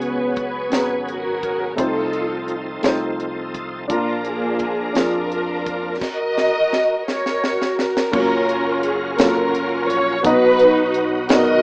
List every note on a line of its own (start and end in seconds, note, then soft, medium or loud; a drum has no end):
0.00 0.68 C#2 medium
0.00 0.68 C#3 medium
0.00 1.74 F#3 soft
0.00 0.31 B3 medium
0.00 0.69 B3 medium
0.00 1.74 B3 soft
0.00 0.31 C#4 medium
0.00 1.74 C#4 soft
0.00 0.35 F#4 medium
0.00 0.32 G#4 medium
0.00 1.74 G#4 medium
0.00 0.33 C#5 medium
0.00 closed hi-hat soft
0.05 0.39 B4 medium
0.36 0.71 B4 medium
0.36 kick medium
0.36 closed hi-hat soft
0.70 1.74 G#1 medium
0.70 1.36 B3 soft
0.70 1.37 C#4 soft
0.70 1.37 F#4 soft
0.70 1.38 G#4 soft
0.70 snare medium
0.70 closed hi-hat medium
0.74 1.06 B4 medium
0.74 1.39 A#5 medium
1.08 1.75 F#4 medium
1.08 1.76 A#4 medium
1.08 closed hi-hat soft
1.43 kick medium
1.43 closed hi-hat soft
1.76 2.80 C2 medium
1.76 2.80 C3 soft
1.76 3.87 F3 medium
1.76 2.42 A3 medium
1.76 2.43 C4 medium
1.76 3.86 C4 soft
1.76 2.43 D#4 medium
1.76 3.86 D#4 soft
1.76 2.44 F4 medium
1.76 3.86 A4 medium
1.76 2.44 C5 medium
1.76 kick loud
1.76 closed hi-hat medium
1.80 2.81 D#4 medium
1.80 2.81 F4 medium
1.80 2.59 A4 medium
2.13 closed hi-hat soft
2.48 closed hi-hat soft
2.82 3.90 C2 medium
2.82 3.49 A3 medium
2.82 3.49 C4 medium
2.82 3.50 D#4 medium
2.82 3.50 F4 medium
2.82 3.50 C5 medium
2.82 snare medium
2.82 closed hi-hat medium
3.20 closed hi-hat soft
3.54 kick medium
3.54 closed hi-hat soft
3.88 4.92 A#1 medium
3.88 4.92 A#2 soft
3.88 5.97 F3 medium
3.88 5.97 A#3 soft
3.88 4.93 A#3 medium
3.88 4.54 D4 medium
3.88 5.97 D4 soft
3.88 4.25 D4 medium
3.88 4.55 F4 medium
3.88 5.97 A#4 medium
3.88 kick medium
3.88 closed hi-hat medium
3.92 4.24 F4 medium
3.92 4.56 A#4 medium
4.25 4.95 D4 medium
4.25 4.95 F4 medium
4.25 4.97 G#4 medium
4.25 closed hi-hat soft
4.59 kick medium
4.59 closed hi-hat soft
4.93 5.97 F2 medium
4.93 5.60 D4 medium
4.93 5.98 D4 medium
4.93 5.61 F4 soft
4.93 5.98 F4 medium
4.93 6.02 A#4 medium
4.93 snare medium
4.93 closed hi-hat medium
4.97 5.62 G#4 medium
5.32 closed hi-hat soft
5.66 kick medium
5.66 closed hi-hat soft
6.01 7.09 F#4 medium
6.01 7.09 A#4 medium
6.01 7.43 D#5 loud
6.01 kick medium
6.01 snare soft
6.01 crash medium
6.38 snare medium
6.73 snare medium
7.08 8.10 F#4 medium
7.08 7.79 A#4 medium
7.08 7.75 C#5 medium
7.08 snare medium
7.26 snare medium
7.44 snare medium
7.62 snare medium
7.79 8.14 A#4 medium
7.79 snare medium
7.97 snare medium
8.11 9.89 F#1 medium
8.11 10.20 F#3 medium
8.11 8.79 F#3 medium
8.11 8.77 A#3 medium
8.11 8.78 C#4 medium
8.11 10.20 C#4 medium
8.11 10.20 F4 medium
8.11 8.78 F4 medium
8.11 10.20 A#4 medium
8.11 8.79 C#5 medium
8.11 kick loud
8.11 crash medium
8.16 9.16 C#4 medium
8.16 9.16 F4 medium
8.16 8.81 A#4 medium
8.49 closed hi-hat medium
8.83 9.19 G#4 medium
8.83 closed hi-hat medium
9.17 9.85 F#3 medium
9.17 9.83 A#3 medium
9.17 9.83 C#4 medium
9.17 10.21 C#4 medium
9.17 9.84 F4 medium
9.17 10.22 F4 medium
9.17 9.26 A4 medium
9.17 9.90 A#4 medium
9.17 snare loud
9.17 closed hi-hat medium
9.28 9.88 A#4 medium
9.55 closed hi-hat soft
9.89 10.21 A#1 medium
9.89 10.25 C#5 medium
9.89 closed hi-hat medium
10.23 11.62 B1 medium
10.23 11.26 B2 medium
10.23 11.62 F#3 medium
10.23 10.89 B3 medium
10.23 11.62 B3 medium
10.23 10.89 D#4 medium
10.23 11.62 D#4 medium
10.23 11.27 D#4 medium
10.23 10.89 F#4 medium
10.23 11.62 F#4 medium
10.23 11.27 F#4 medium
10.23 11.00 B4 loud
10.23 10.90 D#5 medium
10.23 10.90 A#5 medium
10.23 kick loud
10.23 closed hi-hat medium
10.59 closed hi-hat medium
10.94 closed hi-hat soft
11.29 11.62 B3 medium
11.29 11.62 D#4 medium
11.29 11.62 F#4 medium
11.29 11.62 A#4 medium
11.29 11.38 D5 medium
11.29 11.62 D#5 loud
11.29 snare loud
11.29 closed hi-hat medium
11.39 11.62 D#5 medium